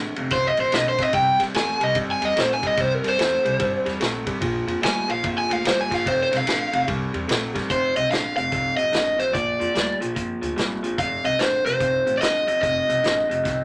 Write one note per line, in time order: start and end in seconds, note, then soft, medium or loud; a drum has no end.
0.00 0.14 F2 medium
0.00 0.14 D3 medium
0.16 0.27 F1 medium
0.16 0.30 F2 medium
0.16 0.30 C3 medium
0.16 ride medium
0.31 0.49 C2 medium
0.31 0.55 F2 medium
0.31 0.55 C3 medium
0.31 0.47 C5 loud
0.31 kick medium
0.31 snare soft
0.31 ride medium
0.47 0.60 D#5 medium
0.57 0.68 A1 medium
0.57 0.71 F2 medium
0.57 0.71 C3 medium
0.57 0.74 C5 medium
0.57 ride medium
0.72 1.00 B1 medium
0.72 0.96 F2 medium
0.72 0.96 D3 medium
0.72 0.87 D#5 medium
0.72 snare loud
0.72 ride medium
0.89 1.02 C5 medium
0.98 1.12 F2 medium
0.98 1.12 C3 medium
0.98 1.14 D#5 medium
0.98 kick medium
0.98 snare soft
0.98 ride medium
1.13 1.31 C2 medium
1.13 1.37 C3 medium
1.13 1.37 G3 medium
1.13 1.40 G5 loud
1.13 kick loud
1.13 ride medium
1.40 1.50 G2 medium
1.40 1.53 C3 medium
1.40 1.53 G3 medium
1.40 snare soft
1.40 ride medium
1.54 1.72 E2 medium
1.54 1.78 C3 medium
1.54 1.78 A3 medium
1.54 1.82 G#5 medium
1.54 snare loud
1.54 ride medium
1.80 1.91 C2 medium
1.80 1.94 C3 medium
1.80 1.94 G3 medium
1.80 1.96 D#5 medium
1.80 ride medium
1.95 2.13 G2 medium
1.95 2.19 C3 medium
1.95 2.19 G3 medium
1.95 kick medium
1.95 ride medium
2.11 2.24 G#5 medium
2.21 2.32 E2 medium
2.21 2.35 C3 medium
2.21 2.35 G3 medium
2.21 2.40 D#5 medium
2.21 ride medium
2.36 2.64 A#1 medium
2.36 2.60 C3 medium
2.36 2.60 A3 medium
2.36 snare loud
2.36 ride medium
2.40 2.52 C5 medium
2.54 2.65 G#5 medium
2.63 2.76 C3 medium
2.63 2.77 G3 medium
2.63 2.81 D#5 medium
2.63 kick medium
2.63 ride medium
2.77 2.95 C2 loud
2.77 3.01 C3 loud
2.77 3.02 G3 loud
2.77 2.95 C5 loud
2.77 kick loud
2.77 ride medium
2.95 3.06 A#4 medium
3.04 3.14 G2 medium
3.04 3.17 C3 medium
3.04 3.17 G3 medium
3.04 snare soft
3.04 ride medium
3.09 3.87 C5 loud
3.18 3.36 E2 medium
3.18 3.42 C3 medium
3.18 3.42 A3 medium
3.18 snare loud
3.18 ride medium
3.45 3.55 C2 medium
3.45 3.58 C3 medium
3.45 3.58 G3 medium
3.45 ride medium
3.59 3.77 G2 loud
3.59 3.83 C3 medium
3.59 3.83 G3 loud
3.59 kick loud
3.59 ride medium
3.85 3.96 E2 medium
3.85 3.99 C3 medium
3.85 3.99 G3 medium
3.85 snare soft
3.85 ride medium
4.00 4.28 A#1 medium
4.00 4.24 C3 medium
4.00 4.24 A3 loud
4.00 snare loud
4.00 ride medium
4.26 4.40 C3 medium
4.26 4.40 G3 medium
4.26 kick medium
4.26 ride medium
4.41 4.59 A#1 loud
4.41 4.65 A#2 medium
4.41 4.65 F3 loud
4.41 kick loud
4.41 ride medium
4.67 4.77 F2 medium
4.67 4.80 A#2 medium
4.67 4.81 F3 medium
4.67 ride medium
4.82 5.00 D2 medium
4.82 5.06 A#2 medium
4.82 5.06 G3 medium
4.82 5.10 G#5 loud
4.82 snare loud
4.82 ride medium
5.08 5.19 A#1 medium
5.08 5.22 A#2 medium
5.08 5.22 F3 medium
5.08 5.24 F5 medium
5.08 ride medium
5.23 5.41 F2 loud
5.23 5.47 A#2 medium
5.23 5.48 F3 loud
5.23 kick loud
5.23 ride medium
5.38 5.53 G#5 medium
5.49 5.60 D2 medium
5.49 5.63 A#2 medium
5.49 5.63 F3 medium
5.49 5.65 F5 medium
5.49 ride medium
5.64 6.06 G1 medium
5.64 5.88 A#2 medium
5.64 5.89 G3 medium
5.64 5.79 C5 medium
5.64 snare loud
5.64 ride medium
5.81 5.94 G#5 medium
5.90 6.04 A#2 medium
5.90 6.04 F3 medium
5.90 6.07 F5 medium
5.90 kick medium
5.90 snare soft
5.90 ride medium
6.05 6.23 F1 loud
6.05 6.29 F2 loud
6.05 6.30 C3 loud
6.05 6.20 C5 loud
6.05 kick loud
6.05 ride medium
6.23 6.35 C5 medium
6.31 6.42 C2 medium
6.31 6.45 F2 medium
6.31 6.45 C3 medium
6.31 snare soft
6.31 ride medium
6.37 6.88 F5 loud
6.47 6.64 A1 medium
6.47 6.70 F2 medium
6.47 6.71 D3 medium
6.47 snare loud
6.47 ride medium
6.72 6.83 F1 loud
6.72 6.86 F2 medium
6.72 6.86 C3 medium
6.72 ride medium
6.87 7.05 C2 medium
6.87 7.11 C3 medium
6.87 7.11 G3 loud
6.87 kick loud
6.87 ride medium
7.13 7.24 E2 medium
7.13 7.27 C3 medium
7.13 7.28 G3 medium
7.13 ride medium
7.28 7.70 A#1 medium
7.28 7.52 C3 medium
7.28 7.52 A3 loud
7.28 snare loud
7.28 ride medium
7.54 7.68 C3 medium
7.54 7.68 G3 medium
7.54 kick medium
7.54 snare soft
7.54 ride medium
7.69 7.88 F1 medium
7.69 7.93 F2 medium
7.69 7.93 C3 medium
7.69 7.95 C5 loud
7.69 kick loud
7.69 closed hi-hat medium
7.96 8.06 C2 medium
7.96 8.09 F2 medium
7.96 8.09 C3 medium
7.96 8.11 D#5 medium
7.96 closed hi-hat medium
8.10 8.29 A1 medium
8.10 8.34 F2 medium
8.10 8.35 D3 medium
8.10 8.36 F5 loud
8.10 snare loud
8.10 closed hi-hat medium
8.37 8.47 F1 medium
8.37 8.50 F2 medium
8.37 8.51 C3 medium
8.37 8.77 F5 loud
8.37 closed hi-hat medium
8.52 8.70 C2 medium
8.52 8.76 F2 medium
8.52 8.76 C3 medium
8.52 kick loud
8.52 closed hi-hat medium
8.77 8.88 A1 medium
8.77 8.91 F2 medium
8.77 8.92 C3 medium
8.77 9.20 D#5 medium
8.77 closed hi-hat medium
8.92 9.34 A1 medium
8.92 9.16 F2 medium
8.92 9.17 D3 medium
8.92 snare loud
8.92 closed hi-hat medium
9.18 9.32 F2 medium
9.18 9.32 C3 medium
9.18 9.33 C5 medium
9.18 closed hi-hat medium
9.33 9.52 A#1 medium
9.33 9.57 A#2 medium
9.33 9.57 F3 medium
9.33 9.97 D5 medium
9.33 kick loud
9.33 closed hi-hat medium
9.59 9.71 F2 medium
9.59 9.73 A#2 medium
9.59 9.74 F3 medium
9.59 closed hi-hat medium
9.74 9.93 D2 medium
9.74 9.99 A#2 medium
9.74 9.99 G3 medium
9.74 snare loud
9.74 closed hi-hat medium
10.00 10.11 A#1 medium
10.00 10.14 A#2 medium
10.00 10.15 F3 medium
10.00 closed hi-hat medium
10.15 10.34 F2 medium
10.15 10.39 A#2 medium
10.15 10.40 F3 medium
10.15 kick medium
10.15 closed hi-hat medium
10.41 10.52 D2 medium
10.41 10.55 A#2 medium
10.41 10.56 F3 medium
10.41 closed hi-hat medium
10.56 10.98 G#1 medium
10.56 10.81 A#2 medium
10.56 10.81 G3 medium
10.56 snare medium
10.56 closed hi-hat medium
10.83 10.97 A#2 medium
10.83 10.97 F3 medium
10.83 closed hi-hat medium
10.98 11.16 F1 loud
10.98 11.22 F2 medium
10.98 11.22 C3 loud
10.98 11.23 F5 loud
10.98 kick medium
10.98 closed hi-hat medium
11.24 11.34 C2 medium
11.24 11.37 F2 medium
11.24 11.38 C3 medium
11.24 11.41 D#5 loud
11.24 closed hi-hat medium
11.38 11.57 A1 medium
11.38 11.63 F2 medium
11.38 11.63 D3 medium
11.38 11.65 C5 medium
11.38 snare loud
11.38 closed hi-hat medium
11.65 11.76 F1 medium
11.65 11.79 F2 medium
11.65 11.79 C3 medium
11.65 12.20 C5 medium
11.65 closed hi-hat medium
11.80 11.98 C2 medium
11.80 12.04 F2 medium
11.80 12.04 C3 medium
11.80 kick loud
11.80 closed hi-hat medium
12.06 12.17 A1 medium
12.06 12.20 F2 medium
12.06 12.20 C3 medium
12.06 closed hi-hat medium
12.17 12.45 F2 medium
12.17 12.21 D5 medium
12.17 12.47 D#5 loud
12.17 closed hi-hat medium
12.22 12.49 D#2 medium
12.22 12.45 D3 medium
12.22 snare loud
12.47 12.61 F2 medium
12.47 12.61 C3 medium
12.47 12.60 D#5 medium
12.47 closed hi-hat medium
12.62 12.80 F1 medium
12.62 12.86 F2 medium
12.62 12.87 C3 medium
12.62 13.64 D#5 loud
12.62 kick loud
12.62 closed hi-hat medium
12.89 12.99 C2 medium
12.89 13.02 F2 medium
12.89 13.03 C3 medium
12.89 closed hi-hat medium
13.03 13.21 A1 medium
13.03 13.27 F2 medium
13.03 13.27 D3 medium
13.03 snare loud
13.03 closed hi-hat medium
13.29 13.40 F1 medium
13.29 13.42 F2 medium
13.29 13.43 C3 medium
13.29 closed hi-hat medium
13.44 13.63 C2 medium
13.44 13.64 F2 medium
13.44 13.64 C3 medium
13.44 kick loud
13.44 snare soft
13.44 closed hi-hat medium